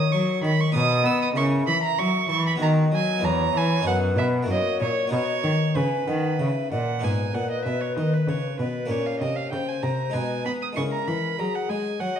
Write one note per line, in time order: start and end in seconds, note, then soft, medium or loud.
0.00 0.10 D#3 medium
0.00 0.70 E4 soft
0.00 0.71 C#5 soft
0.00 0.73 C#5 medium
0.00 0.13 D#6 loud
0.12 0.42 F#3 medium
0.12 0.41 F#3 medium
0.12 0.43 C#6 medium
0.42 0.50 D#3 medium
0.42 0.72 D#3 medium
0.42 0.62 B5 medium
0.61 0.74 C#6 medium
0.72 1.06 B2 medium
0.72 1.03 B2 medium
0.72 1.33 D#4 medium
0.72 1.34 B4 soft
0.72 1.39 D#5 medium
0.72 1.07 D#6 loud
1.04 1.35 B3 medium
1.04 1.34 B3 medium
1.04 1.21 E6 medium
1.22 1.28 D#6 medium
1.35 1.66 C#3 medium
1.35 1.65 C#3 medium
1.35 2.57 E4 soft
1.35 2.57 A#4 medium
1.35 2.36 E5 medium
1.35 1.45 C#6 loud
1.67 1.76 E3 medium
1.67 1.96 E3 medium
1.67 1.82 B5 loud
1.83 2.00 A#5 loud
1.99 2.29 F#3 medium
1.99 2.27 F#3 medium
1.99 2.29 C#6 loud
2.30 2.60 E3 medium
2.30 2.58 E3 medium
2.30 2.45 C#6 medium
2.47 2.53 B5 medium
2.56 3.17 B3 soft
2.56 3.20 F#4 medium
2.56 3.20 B4 soft
2.60 2.89 D#3 medium
2.60 2.91 D#3 medium
2.60 3.26 D#5 medium
2.60 2.70 A#5 loud
2.92 3.20 F#3 medium
2.92 3.24 F#3 medium
2.92 3.26 G#5 loud
3.18 3.80 B3 medium
3.18 3.82 E4 soft
3.18 3.83 B4 medium
3.22 3.51 E2 medium
3.22 3.54 E2 medium
3.22 3.88 C#5 medium
3.22 3.58 A#5 medium
3.53 3.82 E3 medium
3.53 3.85 E3 medium
3.57 3.86 G#5 loud
3.81 4.44 B3 soft
3.81 4.45 D#4 medium
3.81 4.44 F#4 medium
3.85 4.14 F#2 medium
3.85 4.20 F#2 medium
3.85 4.49 B4 medium
3.85 3.95 F#5 medium
4.16 4.45 B2 medium
4.16 4.48 B2 medium
4.16 4.26 E5 medium
4.43 5.07 A#3 medium
4.43 5.08 E4 soft
4.43 5.09 F#4 soft
4.47 4.76 F#2 medium
4.47 4.56 F#2 medium
4.47 4.81 D#5 medium
4.51 5.12 C#5 medium
4.80 5.09 A#2 medium
4.80 4.89 A#2 medium
4.80 5.12 C#5 medium
5.08 6.97 B3 soft
5.08 6.98 D#4 soft
5.08 6.99 F#4 soft
5.12 5.41 B2 medium
5.12 5.20 B2 medium
5.12 5.78 C#5 loud
5.12 5.69 D#5 medium
5.44 5.73 D#3 soft
5.44 5.52 D#3 medium
5.75 6.04 C#3 medium
5.75 5.84 C#3 medium
5.75 6.72 B4 medium
5.75 6.09 G#5 medium
6.07 6.39 D#3 medium
6.07 6.37 D#3 medium
6.07 6.42 F#5 medium
6.39 6.68 C#3 soft
6.39 6.48 C#3 medium
6.39 6.72 E5 medium
6.72 7.00 A#2 medium
6.72 7.03 A#2 medium
6.72 6.79 D#5 medium
6.72 7.05 F#5 medium
6.99 8.85 B3 soft
6.99 8.85 D#4 soft
6.99 8.86 G#4 soft
6.99 8.86 B4 medium
7.04 7.32 G#2 soft
7.04 7.33 G#2 medium
7.04 7.36 G#5 medium
7.34 7.64 A#2 soft
7.34 7.63 A#2 soft
7.34 7.50 F#5 medium
7.51 7.64 D#5 medium
7.65 7.94 B2 soft
7.65 7.95 B2 medium
7.65 7.82 E5 medium
7.81 7.96 C#5 medium
7.97 8.26 D#3 medium
7.97 8.26 D#3 soft
7.97 8.15 D#5 medium
8.14 8.30 B4 medium
8.28 8.57 C#3 medium
8.28 8.57 C#3 soft
8.28 8.59 C#5 medium
8.60 8.88 B2 soft
8.60 8.89 B2 medium
8.60 8.92 B4 medium
8.86 10.08 A#3 soft
8.86 10.09 C#4 soft
8.86 10.10 G4 soft
8.90 9.19 A#2 medium
8.90 9.18 A#2 soft
8.90 9.08 C#5 medium
8.90 9.52 C#5 medium
9.06 9.19 F5 medium
9.20 9.51 C3 medium
9.20 9.50 C3 soft
9.20 9.37 D#5 medium
9.36 9.51 F5 medium
9.52 9.81 C#3 medium
9.52 9.81 C#3 soft
9.52 10.15 C5 medium
9.52 9.70 G5 medium
9.68 9.84 G#5 medium
9.82 10.11 C3 soft
9.82 10.12 C3 medium
9.82 10.14 A#5 medium
10.10 10.72 G#3 soft
10.10 10.73 D#4 soft
10.10 10.74 G#4 soft
10.10 10.45 G#5 medium
10.14 10.42 B2 soft
10.14 10.44 B2 medium
10.14 10.75 B4 medium
10.45 10.74 B3 soft
10.45 10.75 B3 medium
10.45 10.52 B5 medium
10.62 10.68 D#6 medium
10.73 11.35 G#3 soft
10.73 12.20 E4 soft
10.73 12.20 G#4 soft
10.73 11.37 A#4 medium
10.73 10.82 C#6 medium
10.77 11.05 C#3 soft
10.77 11.06 C#3 medium
10.92 11.09 A#5 medium
11.07 11.36 E3 soft
11.07 11.37 E3 medium
11.07 11.41 B5 medium
11.39 11.67 F#3 soft
11.39 11.68 F#3 medium
11.39 12.02 G#4 medium
11.39 11.57 A#5 medium
11.55 11.71 F#5 medium
11.69 11.98 G#3 medium
11.69 11.98 G#3 soft
11.69 12.01 G#5 medium
12.00 12.20 F#3 medium
12.00 12.20 F#3 soft
12.00 12.20 C#5 medium
12.00 12.17 F#5 medium
12.16 12.20 D#5 medium